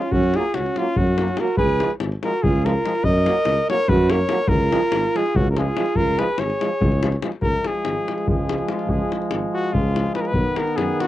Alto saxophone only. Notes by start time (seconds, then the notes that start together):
Already playing: C#4
0.13 C#4
0.37 F4
0.55 C#4
0.80 C#4
0.97 C#4
1.39 F#4
1.58 G#4
2.25 F#4
2.43 F4
2.66 F4
3.05 A#4
3.71 A#4
3.91 F#4
4.12 A#4
4.50 F4
5.17 F4
5.37 C#4
5.51 F#4
5.57 F4
5.97 F4
6.19 G#4
6.39 G#4